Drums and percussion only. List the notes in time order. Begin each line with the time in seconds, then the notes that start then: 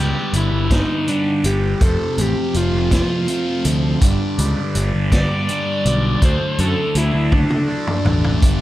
0.33 closed hi-hat
0.71 kick, snare, closed hi-hat
1.08 closed hi-hat
1.44 closed hi-hat
1.81 kick, closed hi-hat
2.18 closed hi-hat
2.54 closed hi-hat
2.91 kick, snare, closed hi-hat
3.28 closed hi-hat
3.65 closed hi-hat
4.01 kick, closed hi-hat
4.39 closed hi-hat
4.75 closed hi-hat
5.12 kick, snare, closed hi-hat
5.49 closed hi-hat
5.86 closed hi-hat
6.22 kick, closed hi-hat
6.58 closed hi-hat
6.95 closed hi-hat
7.32 kick, high tom
7.50 high tom
7.87 mid tom
8.05 floor tom
8.24 floor tom
8.42 kick, closed hi-hat